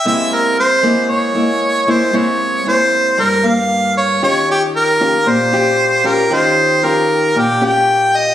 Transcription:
<<
  \new Staff \with { instrumentName = "Harmonica" } { \time 4/4 \key c \phrygian \tempo 4 = 115 e''8 bes'8 c''4 des''4. c''8 | des''4 c''4 bes'8 f''4 des''8 | des''8 g'8 bes'4 c''4. bes'8 | c''4 bes'4 g'8 g''4 ees''8 | }
  \new Staff \with { instrumentName = "Nylon-string guitar" } { \time 4/4 \key c \phrygian << { <aes bes e'>4 r8 <aes bes e'>4 <aes bes e'>4 <aes bes e'>8 | <aes bes e'>4 <aes bes e'>4 r8 bes4. | <des' f' g'>4. <des' f' g'>4 <des' f' g'>4 <des' f' g'>8 | <des' f' g'>4 <des' f' g'>4. <des' f' g'>4. | } \\ { c2 r2 | c2 g,2 | ees2 bes,2 | ees2 bes,2 | } >> }
>>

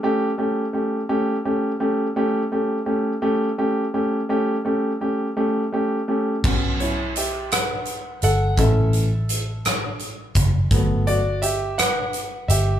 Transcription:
<<
  \new Staff \with { instrumentName = "Grand piano" } { \time 6/8 \key a \mixolydian \tempo 4. = 56 <a cis' g'>8 <a cis' g'>8 <a cis' g'>8 <a cis' g'>8 <a cis' g'>8 <a cis' g'>8 | <a cis' g'>8 <a cis' g'>8 <a cis' g'>8 <a cis' g'>8 <a cis' g'>8 <a cis' g'>8 | <a cis' g'>8 <a cis' g'>8 <a cis' g'>8 <a cis' g'>8 <a cis' g'>8 <a cis' g'>8 | r8 <e' cis''>8 <g' e''>8 <b' fis''>4 <a' fis''>8 |
<a' e''>2 r4 | r8 <fis' d''>8 <g' e''>8 <b' fis''>4 <g' e''>8 | }
  \new Staff \with { instrumentName = "Grand piano" } { \time 6/8 \key a \mixolydian r2. | r2. | r2. | <fis b cis'>8 r2 r8 |
<e a cis'>8 r2 r8 | <fis a b>8 r2 r8 | }
  \new Staff \with { instrumentName = "Fingered electric bass" } { \clef bass \time 6/8 \key a \mixolydian r2. | r2. | r2. | b,,2~ b,,8 g,,8 |
a,,2~ a,,8 fis,,8 | g,,2~ g,,8 g,,8 | }
  \new DrumStaff \with { instrumentName = "Drums" } \drummode { \time 6/8 r4. r4. | r4. r4. | r4. r4. | <cymc bd>8 hh8 hh8 <hh ss>8 hh8 hh8 |
<hh bd>8 hh8 hh8 <hh ss>8 hh8 <hh bd>8 | <hh bd>8 hh8 hh8 <hh ss>8 hh8 hh8 | }
>>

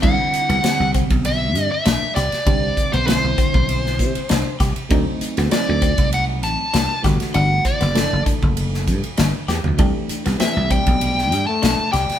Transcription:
<<
  \new Staff \with { instrumentName = "Lead electric guitar" } { \time 4/4 \key c \lydian \tempo 4 = 98 fis''4. r8 e''8. e''8. d''8~ | d''8. c''16 c''2~ c''8 r8 | r4 d''4 fis''8 a''4 r8 | fis''8 d''4 r2 r8 |
r4 e''8 g''4~ g''16 a''8. g''8 | }
  \new Staff \with { instrumentName = "Clean electric guitar" } { \time 4/4 \key c \lydian d'8 r16 b16 c'8 c'8 r4 d'8 g'8 | d'8 r16 b16 c'8 c'8 r4 d'8 g'8 | d'8 r16 b16 c'8 c'8 r4 d'8 g'8 | d'8 r16 b16 d'8 d'8 r4 d'8 g'8 |
d'8 r16 b16 c'8 c'8 r4 d'8 g'8 | }
  \new Staff \with { instrumentName = "Reed electric piano" } { \time 4/4 \key c \lydian <d g c' e'>4 <d g c' g'>2 r4 | <d g c' g'>4 <d g c' e'>2 r4 | <fis a c' ees'>4 <fis a c' ees'>2 r8 <e a d' fis'>8~ | <e a d' fis'>4 <e a d' a'>2 r4 |
<e a d' g'>4 <e a d' g'>2 r4 | }
  \new Staff \with { instrumentName = "Trombone" } { \clef bass \time 4/4 \key c \lydian r1 | r1 | r1 | r1 |
r4 e8 g4~ g16 a8. g8 | }
  \new Staff \with { instrumentName = "Slap bass" } { \clef bass \time 4/4 \key c \lydian c,16 r8 c,16 r16 c,8 b,,8. g,16 r16 b,,16 r16 c,16 r16 | c,8 r16 b,,8 b,,16 r16 b,,8. c16 r16 c,16 r16 c,16 r16 | d,16 r8 d,16 r16 d,8 c,8. a,,16 r16 c,16 r16 g,,16 r16 | g,,8 r16 fis,,8 fis,,16 r16 fis,,8. g,16 r16 g,,16 r16 e,16 d,16 |
c,16 r8 c,16 r16 c,8 b,,8. g,16 r16 b,,16 r16 c,16 r16 | }
  \new DrumStaff \with { instrumentName = "Drums" } \drummode { \time 4/4 <cymc bd>8 <hhp cymr>16 cymr16 <cymr sn>8 <hhp bd cymr>16 <bd cymr>16 cymr8 <hhp cymr>8 <cymr sn>8 <hhp cymr sn>16 <cymr sn>16 | <bd cymr>8 <hhp bd cymr>16 cymr16 <cymr sn>8 <hhp bd cymr>16 bd16 cymr16 sn16 <hhp bd cymr>16 cymr16 <cymr sn>8 <hhp bd cymr sn>16 cymr16 | <bd cymr>8 <hhp cymr>16 <cymr sn>16 <cymr sn>8 <hhp bd cymr>16 <bd cymr>16 cymr8 <hhp cymr>8 <cymr sn>8 <hhp bd cymr sn>16 <cymr sn>16 | cymr8 <hhp bd cymr>16 <cymr sn>16 <cymr sn>8 <hhp bd cymr>16 bd16 cymr16 sn16 <hhp bd cymr>16 cymr16 <cymr sn>8 <hhp sn>16 tomfh16 |
<bd cymr>8 <hhp cymr>16 <cymr sn>16 <cymr sn>8 <hhp bd cymr>16 <bd cymr>16 cymr16 sn16 <hhp cymr>8 <cymr sn>8 <hhp cymr sn>16 <cymr sn>16 | }
>>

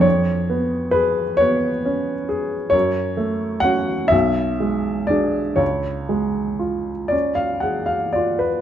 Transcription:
\new Staff \with { instrumentName = "Upright piano" } { \time 6/8 \key cis \phrygian \tempo 4. = 41 << { cis''4 b'8 cis''4. | cis''4 fis''8 e''4 d''8 | cis''4. d''16 eis''16 fis''16 eis''16 d''16 b'16 | } \\ { eis,8 b8 gis'8 b8 cis'8 gis'8 | fis,8 a8 <cis' fis'>8 b,,8 gis8 <d' gis'>8 | cis,8 gis8 eis'8 cis'8 gis'8 eis'8 | } >> }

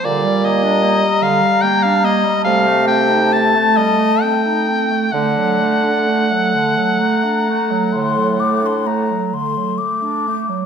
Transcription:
<<
  \new Staff \with { instrumentName = "Flute" } { \time 12/8 \key d \phrygian \tempo 4. = 44 bes''2. a''2. | a''4. a''8 bes''4 c'''8 d'''16 c'''16 bes''8 c'''8 d'''4 | }
  \new Staff \with { instrumentName = "Oboe" } { \time 12/8 \key d \phrygian d''8 ees''4 f''8 g''16 f''16 ees''8 f''8 g''8 a''8 ees''8 g''4 | fis''1~ fis''8 r4. | }
  \new Staff \with { instrumentName = "Clarinet" } { \time 12/8 \key d \phrygian d16 g16 bes16 d'16 bes16 g16 d16 g16 bes16 d'16 bes16 g16 g16 a16 c'16 ees'16 c'16 a16 g16 a16 c'16 ees'16 c'16 a16 | d16 fis16 a16 d'16 a16 fis16 d16 fis16 a16 d'16 a16 fis16 d16 fis16 a16 d'16 a16 fis16 d16 fis16 a16 d'16 a16 fis16 | }
  \new Staff \with { instrumentName = "French horn" } { \time 12/8 \key d \phrygian g2. a2. | a1~ a4. r8 | }
  \new Staff \with { instrumentName = "Bassoon" } { \clef bass \time 12/8 \key d \phrygian bes,4. r4. c4. r4. | d4. r4. a,4. r4. | }
>>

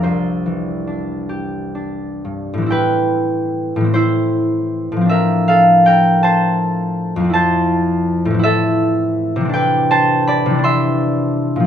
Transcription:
\new Staff \with { instrumentName = "Harp" } { \time 6/8 \key a \minor \tempo 4. = 53 << { <bes' c'' d''>2. | <b' g''>4. <e' c''>4. | <bes' e''>8 <a' f''>8 <bes' g''>8 <c'' a''>4. | <c'' a''>4. <a' e''>4. |
<b' g''>8 <c'' a''>8 <d'' b''>8 <e'' c'''>4. | } \\ { <c, c' d'>8 e8 d'8 g'8 d'8 g,8 | <a, e c' e'>4. <a, e c'>4. | <a, f c' d'>2. | <f, f c' e'>4. <a, e c' e'>4. |
<c e c' d'>4. <c e c' d'>4. | } >> }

